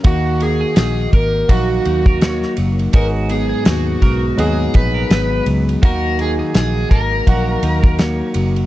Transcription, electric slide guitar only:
X:1
M:4/4
L:1/8
Q:"Swing 16ths" 1/4=83
K:Ebm
V:1 name="Electric slide guitar"
G A A B G3 z | B A G2 A c2 z | B A A B3 z2 |]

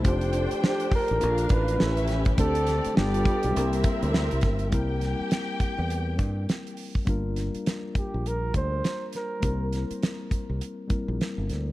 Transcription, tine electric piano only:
X:1
M:4/4
L:1/8
Q:"Swing 16ths" 1/4=102
K:Cmix
V:1 name="Tine electric piano"
[A,DFGc]4 [B,DFAd]2 [A,^CEGA=B]2 | [A,CDGc]2 [G,=B,DFA]2 [G,_B,CDEB]4 | [G,B,CEB]8 | [G,B,DFB]8 |
[G,B,CDEB]4- [G,B,CDEB] [G,B,CEB]3 |]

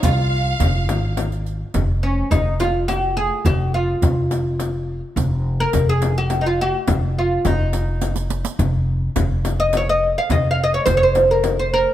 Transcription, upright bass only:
X:1
M:3/4
L:1/8
Q:1/4=105
K:none
V:1 name="Upright bass" clef=bass
C,,2 F,,, _A,,,3 | F,,,2 F,,,4 | F,,,2 F,,,4 | F,,,2 F,,,4 |
F,,,2 F,,,4 | F,,,2 F,,,4 | F,,,2 F,,,4 |]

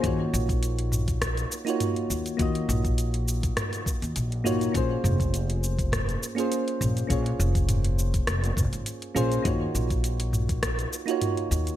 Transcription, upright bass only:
X:1
M:4/4
L:1/16
Q:"Swing 16ths" 1/4=102
K:Ebdor
V:1 name="Upright bass" clef=bass
E,, z B,,,6- B,,, z4 z E,, z | E,, z B,,,4- B,,, z4 E,, B,,,3 z | B,,, z F,,,6- F,,, z4 z B,,, z | B,,, z F,,,4- F,,, z F,,,2 F,,, A,,, z2 B,,, z |
E,, z B,,,6- B,,, z4 z E,, z |]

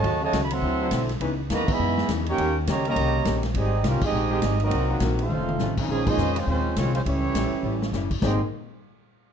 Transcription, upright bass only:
X:1
M:4/4
L:1/8
Q:"Swing" 1/4=205
K:Ab
V:1 name="Upright bass" clef=bass
E,,2 D,,2 =D,,2 _C,,2 | D,,2 E,,2 _G,,2 _F,,2 | E,,2 D,,2 C,,2 B,,,2 | A,,,2 C,, z B,,,2 A,,,2 |
C,,2 B,,,2 F,,,2 =A,,,2 | B,,,2 F,,2 E,,2 C,,2 | ^C,,2 B,,, z =A,,,2 _G,,,2 | A,,, z6 z |]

